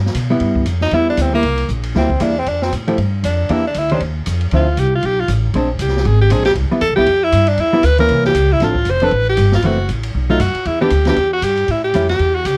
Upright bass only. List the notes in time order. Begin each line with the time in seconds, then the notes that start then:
Already playing: G2
0.15 B2
0.41 G2
0.66 F2
0.92 E2
1.17 D2
1.44 C2
1.69 A#1
1.95 D2
2.20 E2
2.47 F2
2.72 A2
2.98 G2
3.23 F2
3.49 E2
3.75 D2
4.01 D#2
4.27 F2
4.52 D2
4.77 C2
5.03 B1
5.28 A1
5.53 A#1
5.79 C2
6.05 G#1
6.30 A#1
6.55 C2
6.70 muted upright bass stroke
6.81 E2
6.90 C2
6.98 B1
7.06 F2
7.33 G2
7.58 E2
7.83 D2
8.09 C2
8.35 C#2
8.60 A1
8.85 F1
9.11 A1
9.37 G1
9.63 F#1
9.89 A1
10.15 B1
10.39 F#2
10.54 muted upright bass stroke
10.66 E2
10.91 D2
11.17 E2
11.42 G2
11.68 A2
11.94 F2
12.19 E2
12.45 C#2